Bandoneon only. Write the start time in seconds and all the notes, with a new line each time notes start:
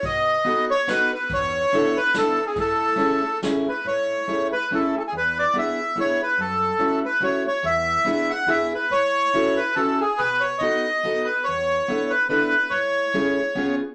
0.05 D#5
0.71 C#5
0.89 B4
1.14 B4
1.34 C#5
1.97 B4
2.18 A4
2.47 G#4
2.60 A4
3.69 B4
3.87 C#5
4.53 B4
4.75 A4
4.99 A4
5.07 G#4
5.17 B4
5.39 D5
5.59 E5
6.00 C#5
6.23 B4
6.41 A4
7.05 B4
7.24 C#5
7.47 C#5
7.66 E5
8.30 F#5
8.50 E5
8.75 B4
8.92 C#5
9.57 B4
9.75 A4
10.00 G#4
10.18 B4
10.40 C#5
10.59 D#5
11.25 B4
11.44 C#5
12.10 B4
12.29 B4
12.70 C#5